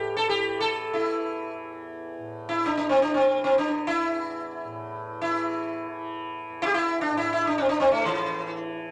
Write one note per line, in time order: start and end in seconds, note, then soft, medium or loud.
0.00 1.54 E2 medium
0.00 2.18 A2 medium
0.00 0.30 E3 medium
0.00 0.16 G4 medium
0.17 0.29 A4 medium
0.29 0.92 E3 medium
0.29 0.60 G4 medium
0.60 0.93 A4 medium
0.92 2.78 E3 medium
0.92 1.81 E4 medium
1.54 3.99 E2 medium
2.18 4.64 A2 medium
2.49 2.66 E4 medium
2.66 2.76 D4 medium
2.77 3.38 E3 medium
2.77 2.89 D4 medium
2.89 3.02 C4 medium
3.02 3.14 D4 medium
3.14 3.43 C4 medium
3.38 5.24 E3 medium
3.44 3.58 C4 medium
3.58 3.88 D4 medium
3.87 5.20 E4 medium
4.00 6.49 E2 medium
4.64 7.10 A2 medium
5.22 5.88 E3 medium
5.22 5.92 E4 medium
5.88 7.73 E3 medium
6.49 8.91 E2 medium
6.62 6.66 E4 medium
6.66 6.74 G4 medium
6.74 7.01 E4 loud
7.01 7.17 D4 medium
7.10 8.91 A2 medium
7.17 7.30 E4 medium
7.33 7.45 E4 medium
7.47 7.57 D4 medium
7.58 7.68 C4 medium
7.69 8.36 E3 medium
7.69 7.79 D4 medium
7.80 7.91 C4 medium
7.92 8.04 A3 medium
8.05 8.91 E3 medium
8.36 8.91 E3 medium